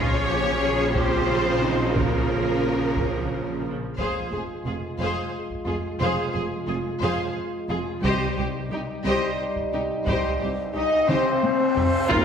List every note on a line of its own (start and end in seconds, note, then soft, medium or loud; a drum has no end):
0.00 3.75 A#1 medium
0.00 3.63 C#3 medium
0.00 3.76 C#3 medium
0.00 3.75 F3 medium
0.00 0.94 C#4 medium
0.00 0.27 F4 medium
0.00 3.64 F4 medium
0.00 0.95 C#5 medium
0.27 0.61 G4 medium
0.62 0.96 G#4 medium
0.94 1.94 C4 medium
0.94 1.28 G4 medium
0.94 1.96 C5 medium
0.94 taiko medium
1.28 1.62 F4 medium
1.63 1.96 D#4 medium
1.96 3.66 A#3 soft
1.96 3.48 C#4 soft
1.96 3.65 A#4 medium
1.96 taiko medium
2.97 taiko medium
3.97 4.07 F1 soft
3.97 4.07 F2 soft
3.97 8.00 G#3 soft
3.97 8.00 F4 soft
3.97 4.30 G#4 soft
3.97 4.31 C5 soft
3.97 4.30 F5 soft
3.97 taiko soft
4.31 4.41 F1 soft
4.31 4.40 F2 soft
4.31 4.41 G#4 soft
4.31 4.42 G#4 soft
4.31 4.39 C5 soft
4.66 4.74 F1 soft
4.66 4.75 F2 soft
4.66 4.74 F4 soft
4.66 4.74 G#4 soft
4.66 4.75 G#4 soft
4.99 5.07 F1 soft
4.99 5.08 F2 soft
4.99 5.32 G#4 soft
4.99 5.31 C5 soft
4.99 5.32 F5 soft
5.50 taiko soft
5.66 5.75 F1 soft
5.66 5.75 F2 soft
5.66 5.75 F4 soft
5.66 5.74 G#4 soft
5.66 5.76 G#4 soft
6.00 6.08 F1 medium
6.00 6.10 F2 medium
6.00 6.33 G#4 medium
6.00 6.33 C5 soft
6.00 6.32 F5 soft
6.33 6.43 F1 soft
6.33 6.43 F2 soft
6.33 6.41 G#4 soft
6.33 6.42 G#4 soft
6.33 6.41 C5 soft
6.67 6.76 F1 soft
6.67 6.77 F2 soft
6.67 6.75 F4 soft
6.67 6.75 G#4 soft
6.67 6.76 G#4 soft
7.02 7.10 F1 medium
7.02 7.11 F2 medium
7.02 7.34 G#4 soft
7.02 7.34 C5 soft
7.02 7.34 F5 medium
7.69 7.78 F1 soft
7.69 7.77 F2 soft
7.69 7.77 F4 soft
7.69 7.78 G#4 soft
7.69 7.78 G#4 medium
8.03 8.11 C2 medium
8.03 8.12 C2 medium
8.03 9.02 C3 soft
8.03 10.70 G3 medium
8.03 10.70 D#4 medium
8.03 8.36 G4 medium
8.03 8.36 C5 medium
8.03 8.36 D#5 medium
8.03 taiko soft
8.38 8.46 C2 soft
8.38 8.46 G4 soft
8.38 8.46 C5 soft
8.70 8.78 C2 soft
8.70 8.81 C2 soft
8.70 8.81 D#4 soft
8.70 8.80 G4 soft
9.04 9.12 C2 soft
9.04 9.14 C2 medium
9.04 9.37 G4 soft
9.04 9.38 C5 medium
9.04 9.37 D#5 medium
9.56 taiko soft
9.73 9.81 C2 soft
9.73 9.82 C2 soft
9.73 9.82 D#4 soft
9.73 9.81 G4 soft
9.73 9.82 G4 soft
10.07 10.15 C2 soft
10.07 10.16 C2 soft
10.07 10.38 G4 soft
10.07 10.38 C5 soft
10.07 10.39 D#5 soft
10.07 taiko medium
10.07 reverse cymbal soft
10.41 10.50 C2 soft
10.41 10.49 G4 soft
10.41 10.50 C5 soft
10.74 10.83 C2 soft
10.74 10.84 C2 soft
10.74 11.06 D#4 medium
10.74 11.07 D#4 soft
10.74 10.85 D#4 soft
10.74 10.82 G4 soft
10.74 10.83 G4 soft
10.74 11.06 D#5 soft
10.74 11.07 D#5 soft
11.08 11.17 C2 soft
11.08 11.18 C2 soft
11.08 11.93 C4 medium
11.08 12.10 C4 soft
11.08 11.40 G4 soft
11.08 12.10 C5 medium
11.08 11.40 C5 soft
11.08 12.10 C5 soft
11.08 11.40 D#5 soft
11.08 taiko mid medium
11.43 taiko high medium
11.76 11.85 C2 soft
11.76 11.86 D#4 soft
11.76 11.84 G4 soft
11.76 11.85 G4 soft
11.76 taiko low medium
12.09 12.25 F2 medium
12.09 12.20 F2 medium
12.09 12.25 A#3 medium
12.09 12.25 C4 medium
12.09 12.25 F4 medium
12.09 12.25 A#4 medium
12.09 12.25 C5 medium
12.09 12.25 F5 medium
12.09 taiko medium
12.09 tam-tam medium
12.09 sub drop medium